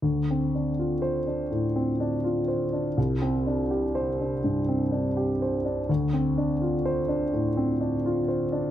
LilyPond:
\new Staff \with { instrumentName = "Grand piano" } { \time 4/4 \key d \minor \tempo 4 = 83 << { r4 \tuplet 3/2 { r8 c''4 } r2 | r4 \tuplet 3/2 { r8 c''4 } r2 | r4 \tuplet 3/2 { r8 c''4 } r2 | } \\ { \tuplet 3/2 { d,8 c'8 d'8 f'4 d'8 a,8 c'8 d'8 f'8 c''8 d'8 } | \tuplet 3/2 { c,8 c'8 d'8 g'4 d'8 g,8 c'8 d'8 g'8 c''8 d'8 } | \tuplet 3/2 { d,8 c'8 d'8 f'4 d'8 a,8 c'8 d'8 f'8 c''8 d'8 } | } >> }